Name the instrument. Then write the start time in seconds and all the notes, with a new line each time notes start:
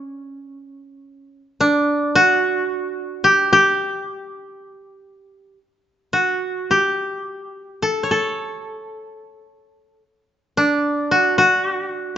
koto
Already playing: C#4
1.61 D4
2.15 F#4
3.24 G4
3.53 G4
6.13 F#4
6.71 G4
7.82 A4
8.03 C#5
8.11 A4
10.57 D4
11.11 F#4
11.38 F#4